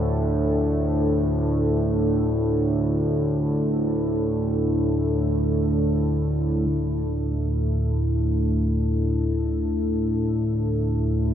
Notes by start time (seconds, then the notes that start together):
Already playing: D2 A2 D4 E4 A4
6.70 D2 A2